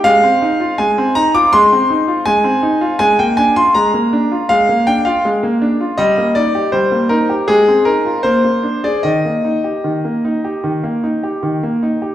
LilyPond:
\new Staff \with { instrumentName = "Grand piano" } { \time 4/4 \key ees \major \tempo 4 = 80 << { f''4 aes''8 bes''16 d'''16 c'''4 aes''4 | aes''16 g''16 aes''16 c'''16 bes''4 f''8 g''16 f''8 r8. | ees''8 d''8 c''8 bes'8 aes'8 bes'8 c''8. d''16 | ees''2.~ ees''8 r8 | } \\ { aes16 c'16 ees'16 f'16 aes16 c'16 ees'16 f'16 aes16 c'16 ees'16 f'16 aes16 c'16 ees'16 f'16 | aes16 bes16 d'16 f'16 aes16 bes16 d'16 f'16 aes16 bes16 d'16 f'16 aes16 bes16 d'16 f'16 | g16 bes16 ees'16 g'16 g16 bes16 ees'16 g'16 aes16 c'16 ees'16 f'16 bes16 bes16 d'16 aes'16 | ees16 bes16 ees'16 g'16 ees16 bes16 ees'16 g'16 ees16 bes16 ees'16 g'16 ees16 bes16 ees'16 g'16 | } >> }